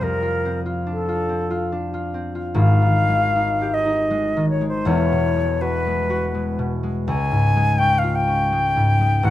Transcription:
Already playing: harp C4 F4
0.01 harp F2, flute A#4
0.22 harp F4
0.45 harp C4
0.66 harp F4
0.87 harp D4
0.91 flute A4
1.09 harp F4
1.29 harp C4
1.50 harp F4
1.72 harp D4
1.94 harp F4
2.14 harp C4
2.35 harp F4
2.54 harp G#1 G#2, flute F5
2.82 harp D#3
3.08 harp G#3
3.36 harp D#4
3.61 harp G4
3.73 flute D#5
3.86 harp D#4
4.10 harp G#3
4.37 harp D#3
4.49 flute C#5
4.61 harp G#3
4.68 flute C5
4.85 harp E1 E2, flute C#5
5.12 harp B2
5.36 harp G#3
5.61 harp F#4, flute B4
5.87 harp G#3
6.10 harp F#4
6.34 harp G#3
6.59 harp B2
6.83 harp G#3
7.07 harp C#2, flute G#5
7.31 harp G#2
7.56 harp G#3
7.78 harp C#4, flute G5
7.98 flute F5
8.04 harp F4
8.15 flute G5
8.28 harp C#4
8.52 harp G#3
8.77 harp G#2
9.01 harp G#3
9.23 harp A1, flute F#5

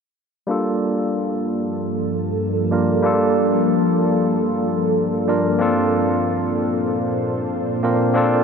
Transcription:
0.47 ambient pad G2 F3 A#3 A4, tine electric piano G3 A#3 D4 F4
0.51 tine electric piano A4
2.71 tine electric piano G3 A#3 D4 F4 A#4
3.02 tine electric piano G3 A#3 D4 F4 A4
5.27 tine electric piano G3 A#3 D4 F4 A#4
5.58 ambient pad A#2 D4 A4 C5, tine electric piano A#3 C4 D4 F4 A4
7.83 tine electric piano A#3 C4 D4 F4 A#4
8.14 tine electric piano A#3 C4 D4 F4 A4

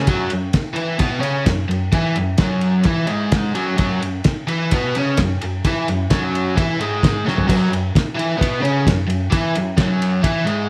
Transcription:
0.07 overdriven electric guitar F#2 F#3, kick, ride
0.30 overdriven electric guitar F#2, ride
0.53 kick, snare, ride
0.73 overdriven electric guitar E3 E4, ride
0.98 overdriven electric guitar B2 B3, kick, ride
1.20 overdriven electric guitar C#3 C#4, ride
1.45 overdriven electric guitar F#2, kick, snare, ride
1.69 overdriven electric guitar F#2, ride
1.92 overdriven electric guitar E3 E4, kick, ride
2.15 overdriven electric guitar F#2, ride
2.38 overdriven electric guitar F#2 F#3, kick, snare, ride
2.61 ride
2.83 overdriven electric guitar E3 E4, kick, ride
3.06 overdriven electric guitar G#2 G#3, ride
3.32 kick, snare, ride
3.54 overdriven electric guitar F#2 F#3, ride
3.77 overdriven electric guitar F#2 F#3, kick, ride
4.02 overdriven electric guitar F#2, ride
4.24 kick, snare, ride
4.47 overdriven electric guitar E3 E4, ride
4.71 overdriven electric guitar B2 B3, kick, ride
4.95 overdriven electric guitar C#3 C#4, ride
5.17 overdriven electric guitar F#2, kick, snare, ride
5.42 overdriven electric guitar F#2, ride
5.64 overdriven electric guitar E3 E4, kick, ride
5.88 overdriven electric guitar F#2, ride
6.10 overdriven electric guitar F#2 F#3, kick, snare, ride
6.35 ride
6.55 overdriven electric guitar E3 E4, kick, ride
6.79 overdriven electric guitar G#2 G#3, ride
7.03 kick, snare, ride
7.25 overdriven electric guitar F#2 F#3, snare
7.38 floor tom
7.47 overdriven electric guitar F#2 F#3, kick, ride, splash
7.70 overdriven electric guitar F#2, ride
7.95 kick, snare, ride
8.15 overdriven electric guitar E3 E4, ride
8.37 overdriven electric guitar B2 B3
8.41 kick, ride
8.60 overdriven electric guitar C#3 C#4
8.65 ride
8.85 overdriven electric guitar F#2, kick, snare, ride
9.07 overdriven electric guitar F#2, ride
9.30 overdriven electric guitar E3 E4, kick, ride
9.55 overdriven electric guitar F#2, ride
9.77 overdriven electric guitar F#2 F#3, kick, snare, ride
10.02 ride
10.22 overdriven electric guitar E3 E4, kick, ride
10.45 overdriven electric guitar G#2 G#3, ride

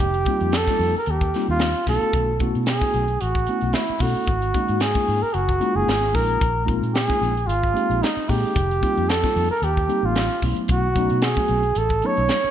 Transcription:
Already playing: muted trumpet G4
0.00 fingered electric bass F1, kick
0.14 closed hi-hat
0.25 tine electric piano G3 A#3 C4 D#4 F4, kick, closed hi-hat
0.41 fingered electric bass F2, closed hi-hat
0.52 muted trumpet A4, snare, closed hi-hat
0.67 tine electric piano G3 A#3 C4 D#4 F4, kick, snare
0.79 fingered electric bass F2, open hi-hat
0.95 muted trumpet A#4, muted fingered electric bass stroke
1.06 fingered electric bass D#2, tine electric piano D#4, closed hi-hat
1.10 tine electric piano F4, muted trumpet G4
1.21 kick, closed hi-hat
1.34 tine electric piano G3 A#3 C4 D#4 F4, snare, closed hi-hat
1.49 fingered electric bass D#2, muted trumpet F4
1.59 snare, closed hi-hat
1.75 closed hi-hat
1.87 fingered electric bass B1, tine electric piano A3 B3 C#4 E4 F#4, muted trumpet A4, kick, snare, open hi-hat
2.01 muted fingered electric bass stroke, closed hi-hat
2.13 fingered electric bass B1, kick, closed hi-hat
2.40 tine electric piano A3 B3 C#4 E4 F#4, kick, closed hi-hat
2.55 fingered electric bass B2, closed hi-hat
2.66 muted trumpet G#4, snare, closed hi-hat
2.81 tine electric piano A3 B3 C#4 E4 F#4, kick, closed hi-hat
2.94 fingered electric bass B1, closed hi-hat
3.08 closed hi-hat
3.21 fingered electric bass A1, tine electric piano E4 A4, muted trumpet F#4, closed hi-hat
3.35 kick, closed hi-hat
3.47 tine electric piano A3 B3 C#4 E4 F#4, closed hi-hat
3.61 fingered electric bass B1, closed hi-hat
3.73 muted trumpet E4, snare, closed hi-hat
3.87 muted fingered electric bass stroke, closed hi-hat
3.99 fingered electric bass B2, tine electric piano A3 B3 C#4 E4 A4, muted trumpet F#4, kick, open hi-hat
4.15 muted fingered electric bass stroke
4.27 fingered electric bass G#1, kick, closed hi-hat
4.42 closed hi-hat
4.54 tine electric piano G#3 A#3 C#4 D#4 F#4, kick, closed hi-hat
4.68 fingered electric bass G#2, closed hi-hat
4.80 muted trumpet G#4, snare, closed hi-hat
4.94 tine electric piano G#3 A#3 C#4 D#4 F4, kick
5.08 fingered electric bass G#2, open hi-hat
5.22 muted trumpet A#4, muted fingered electric bass stroke
5.34 fingered electric bass F#1, tine electric piano D#4 F#4, muted trumpet F#4, closed hi-hat
5.48 kick, closed hi-hat
5.60 tine electric piano G#3 A#3 C#4 D#4 F4, closed hi-hat
5.75 fingered electric bass F#1, muted trumpet G#4
5.88 fingered electric bass G#1, snare, closed hi-hat
6.04 closed hi-hat
6.12 fingered electric bass A#1, tine electric piano G#3 A#3 C#4 D#4 F4, muted trumpet A#4, kick, open hi-hat
6.30 closed hi-hat
6.41 fingered electric bass A#1, kick, closed hi-hat
6.65 tine electric piano G#3 A#3 C4 D#4 F4, kick, closed hi-hat
6.82 fingered electric bass A#2, closed hi-hat
6.94 muted trumpet G#4, snare, closed hi-hat
7.07 tine electric piano G#3 A#3 C4 D#4 F4, kick, closed hi-hat
7.21 fingered electric bass A#1, closed hi-hat
7.37 closed hi-hat
7.47 fingered electric bass G#1, tine electric piano D#4 F4, muted trumpet F4, closed hi-hat
7.63 kick, closed hi-hat
7.74 tine electric piano G#3 A#3 C4 D#4 G4, closed hi-hat
7.90 fingered electric bass A#1, closed hi-hat
8.02 muted trumpet D#4, snare, closed hi-hat
8.17 muted fingered electric bass stroke, closed hi-hat
8.29 fingered electric bass A#2, tine electric piano G#3 A#3 C4 D#4 G#4, muted trumpet G4, kick, open hi-hat
8.44 muted fingered electric bass stroke
8.56 fingered electric bass F1, kick, closed hi-hat
8.71 closed hi-hat
8.82 tine electric piano G3 A#3 C4 D#4 F4, kick, closed hi-hat
8.97 fingered electric bass F2, closed hi-hat
9.09 muted trumpet A4, snare, closed hi-hat
9.23 tine electric piano G3 A#3 C4 D#4 F4, kick, snare
9.36 fingered electric bass F2, open hi-hat
9.51 muted trumpet A#4, muted fingered electric bass stroke
9.62 fingered electric bass D#2, tine electric piano D#4 F4, muted trumpet G4, closed hi-hat
9.77 kick, closed hi-hat
9.88 tine electric piano G3 A#3 C4 D#4 G4, closed hi-hat
10.03 fingered electric bass A1, muted trumpet F4
10.15 snare, closed hi-hat
10.30 closed hi-hat
10.42 fingered electric bass B1, tine electric piano F#3 A3 B3 C#4 E4, kick, open hi-hat
10.56 muted fingered electric bass stroke, closed hi-hat
10.68 fingered electric bass B1, muted trumpet F#4, kick, closed hi-hat
10.95 tine electric piano F#3 A3 B3 C#4 D#4, kick, closed hi-hat
11.10 fingered electric bass B2, closed hi-hat
11.22 muted trumpet G#4, snare, closed hi-hat
11.36 tine electric piano F#3 A3 B3 C#4 F#4, kick, closed hi-hat
11.48 fingered electric bass B1, closed hi-hat
11.63 closed hi-hat
11.75 fingered electric bass A1, tine electric piano C#4 F#4, muted trumpet A4, closed hi-hat
11.89 kick, closed hi-hat
12.02 tine electric piano F#3 A3 B3 C#4 D#4, closed hi-hat
12.06 muted trumpet C#5
12.17 fingered electric bass B1, closed hi-hat
12.29 snare, closed hi-hat
12.44 muted fingered electric bass stroke, closed hi-hat

